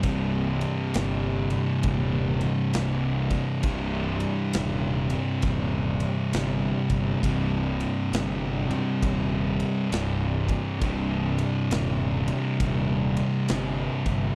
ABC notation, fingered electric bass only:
X:1
M:4/4
L:1/8
Q:"Swing" 1/4=67
K:Cm
V:1 name="Fingered electric bass" clef=bass
C,,,2 G,,,2 E,,,2 C,,,2 | C,,,2 E,,,2 E,,,2 G,,, G,,, | C,,,2 G,,,2 E,,,2 C,,,2 | C,,,2 E,,,2 E,,,2 G,,, G,,, |]